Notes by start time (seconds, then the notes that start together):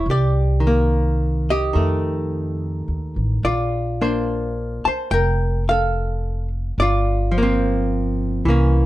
0.06 C2
0.10 G4 D5
0.60 D#3
0.67 A#3
1.50 G4 D#5
1.73 F2 D#3 A3
2.88 D#2
3.16 A1
3.43 A#1 F4 D5
4.02 A#3 D4 C5
4.85 C5 A5, muted upright bass stroke
5.11 F1 A#4 G5
5.69 A4 F5
6.78 G1 D5
6.82 F4
7.32 F3
7.38 A#3
7.42 C4
8.45 C2 E3 A#3
8.50 C#4